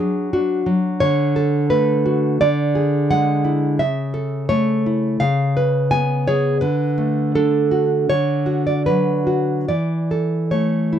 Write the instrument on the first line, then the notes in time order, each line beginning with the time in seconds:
nylon-string guitar
Already playing: D4 G#4
0.00 F#3
0.33 D4 F#4
0.66 F#3
1.00 D3 C#5
1.36 A4
1.70 A3 B4
2.06 F#4
2.41 D3 D5
2.75 G#4
3.10 G#3 F#5
3.45 E4
3.79 C#3 E5
4.14 A4
4.49 A3 C#5
4.86 E4
5.20 C#3 F5
5.57 B4
5.91 B3 G#5
6.28 G#4 C#5
6.61 D3 B4
6.98 A3
7.35 D4 A4
7.71 F#4
8.10 D3 C#5
8.46 F#4
8.67 D5
8.86 F#3 B4
9.27 F#4
9.68 E3 D5
10.11 A4
10.51 A3 C#5
10.93 E4